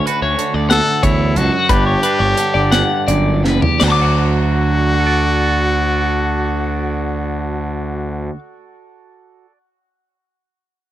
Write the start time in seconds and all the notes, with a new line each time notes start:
Already playing: D2 C#4
0.06 F#4 B4, closed hi-hat
0.22 D2 C#5
0.38 D3, closed hi-hat
0.54 D2 D5
0.70 D2 A4 F#5, snare, closed hi-hat
1.03 D2 E2 E4 C#5, kick, closed hi-hat
1.35 C#2 F#2 F#4 A4, closed hi-hat
1.53 F#4
1.69 G1 G2 D4 G4 B4, kick, closed hi-hat
1.86 C#5
2.03 D4 B4, closed hi-hat
2.19 G1 C#5
2.37 D3, closed hi-hat
2.54 G1 D5
2.72 G2 F#5, snare, closed hi-hat
3.08 G1 F#2 D5, closed hi-hat
3.43 F#1 E2 B4, snare
3.61 G4, floor tom
3.80 D2 F#4 D5 F#5, snare, crash
3.86 D3 A5
3.92 F#3 D6
4.02 F#4
4.95 F#4
5.00 A4
5.07 D5